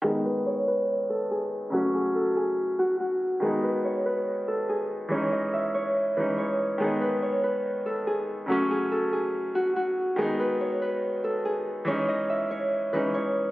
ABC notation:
X:1
M:4/4
L:1/8
Q:1/4=142
K:G#phr
V:1 name="Harp"
G B c B2 A G2 | F G A G2 F F2 | G B c B2 A G2 | c d e c z B c z |
G B c B2 A G2 | F G A G2 F F2 | G B c B2 A G2 | c d e c z B c z |]
V:2 name="Grand piano" clef=bass
[D,G,B,D]8 | [C,F,A,C]8 | [D,G,B,D]8 | [E,G,CD]4- [E,G,CD] [E,G,CD]3 |
[D,G,B,D]8 | [C,F,A,C]8 | [D,G,B,D]8 | [E,G,CD]4- [E,G,CD] [E,G,CD]3 |]